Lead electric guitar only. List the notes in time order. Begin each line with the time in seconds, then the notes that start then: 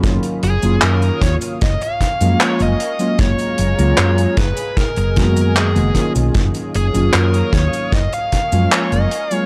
0.44 G#4
0.84 A#4
1.23 C#5
1.63 D#5
1.83 F5
2.41 C#5
2.62 D#5
3.20 C#5
4.38 B4
4.78 A#4
4.98 A#4
5.57 G#4
6.76 G#4
7.15 A#4
7.54 C#5
7.94 D#5
8.14 F5
8.72 C#5
8.92 D#5
9.34 C#5